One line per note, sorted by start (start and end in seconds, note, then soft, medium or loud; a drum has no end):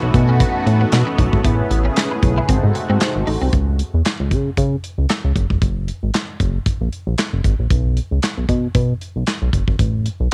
0.00 0.11 B1 loud
0.00 1.41 E3 medium
0.00 2.46 A3 medium
0.00 2.46 B3 medium
0.00 1.40 C#4 medium
0.00 1.40 D#4 medium
0.00 1.41 F#4 medium
0.00 1.43 F#4 medium
0.00 1.41 A4 medium
0.00 muted clean electric guitar stroke soft
0.14 0.43 B2 loud
0.14 kick loud
0.14 closed hi-hat medium
0.29 0.36 C#4 medium
0.40 0.50 B3 loud
0.40 kick loud
0.40 closed hi-hat loud
0.66 0.85 A2 loud
0.66 muted clean electric guitar stroke soft
0.66 closed hi-hat medium
0.81 0.88 B3 medium
0.92 1.03 B2 loud
0.92 muted clean electric guitar stroke soft
0.92 snare loud
0.92 clap medium
0.92 closed hi-hat medium
1.07 1.14 C#4 medium
1.18 1.29 B1 medium
1.18 1.28 D#4 medium
1.18 kick medium
1.18 closed hi-hat medium
1.33 1.41 G#1 medium
1.33 kick medium
1.44 1.63 A1 loud
1.44 2.48 C#3 medium
1.44 1.54 A3 medium
1.44 1.51 B3 medium
1.44 2.47 E4 medium
1.44 2.47 G#4 medium
1.44 2.48 G#4 medium
1.44 2.47 B4 medium
1.44 kick loud
1.44 closed hi-hat medium
1.50 2.50 C#4 medium
1.70 1.89 A1 loud
1.70 muted clean electric guitar stroke soft
1.70 closed hi-hat medium
1.85 1.93 C#4 medium
1.96 2.06 C#4 medium
1.96 snare loud
1.96 clap medium
1.96 closed hi-hat loud
2.11 muted clean electric guitar stroke soft
2.23 2.41 B1 medium
2.23 kick loud
2.23 closed hi-hat medium
2.38 2.45 E4 medium
2.48 2.59 G#1 loud
2.48 3.52 C3 medium
2.48 3.52 G#3 medium
2.48 3.52 A3 medium
2.48 2.58 C4 medium
2.48 3.51 D#4 medium
2.48 3.51 F#4 medium
2.48 3.52 F#4 medium
2.48 3.51 A4 medium
2.48 3.51 C5 medium
2.48 kick loud
2.48 closed hi-hat loud
2.64 2.72 G#2 loud
2.75 muted clean electric guitar stroke soft
2.75 closed hi-hat medium
2.90 2.98 G#2 medium
2.90 2.97 C4 medium
3.00 muted clean electric guitar stroke soft
3.00 snare loud
3.00 clap loud
3.00 closed hi-hat medium
3.16 3.24 G#1 loud
3.27 3.38 A1 medium
3.27 3.37 D#4 medium
3.27 open hi-hat medium
3.42 3.50 C2 medium
3.42 3.49 C4 medium
3.53 3.82 C#2 medium
3.53 kick loud
3.53 closed hi-hat medium
3.79 closed hi-hat medium
3.94 4.02 E2 medium
4.05 snare loud
4.05 clap medium
4.05 closed hi-hat medium
4.20 4.33 C#2 medium
4.31 4.50 C#3 medium
4.31 kick medium
4.31 closed hi-hat medium
4.57 4.76 C#3 loud
4.57 kick loud
4.57 closed hi-hat medium
4.84 closed hi-hat medium
4.98 5.06 C#2 medium
5.09 snare loud
5.09 clap medium
5.09 closed hi-hat medium
5.24 5.33 C#2 loud
5.36 5.46 F#1 medium
5.36 kick medium
5.36 closed hi-hat medium
5.50 5.59 E1 medium
5.50 kick medium
5.62 5.91 F#1 loud
5.62 kick loud
5.62 closed hi-hat medium
5.88 closed hi-hat medium
6.03 6.11 G#1 medium
6.14 snare loud
6.14 clap medium
6.14 closed hi-hat loud
6.40 6.59 F#1 loud
6.40 kick medium
6.40 closed hi-hat medium
6.66 kick loud
6.66 closed hi-hat medium
6.81 6.89 A#1 medium
6.92 closed hi-hat medium
7.07 7.15 A#1 medium
7.18 snare loud
7.18 clap medium
7.18 closed hi-hat medium
7.33 7.41 F#1 medium
7.44 7.55 G#1 loud
7.44 kick medium
7.44 closed hi-hat medium
7.59 7.67 A#1 medium
7.70 8.00 B1 loud
7.70 kick loud
7.70 closed hi-hat medium
7.97 closed hi-hat medium
8.11 8.20 C#2 medium
8.22 snare loud
8.22 clap medium
8.22 closed hi-hat medium
8.38 8.46 B1 medium
8.49 8.68 B2 loud
8.49 kick medium
8.49 closed hi-hat medium
8.75 8.94 B2 loud
8.75 kick loud
8.75 closed hi-hat loud
9.01 closed hi-hat medium
9.16 9.24 B1 loud
9.27 snare medium
9.27 clap medium
9.27 closed hi-hat medium
9.42 9.50 B1 medium
9.53 9.64 F#1 medium
9.53 kick medium
9.53 closed hi-hat medium
9.68 9.76 G#1 medium
9.68 kick medium
9.79 10.09 A1 loud
9.79 kick loud
9.79 closed hi-hat medium
10.06 closed hi-hat medium
10.20 10.28 B1 medium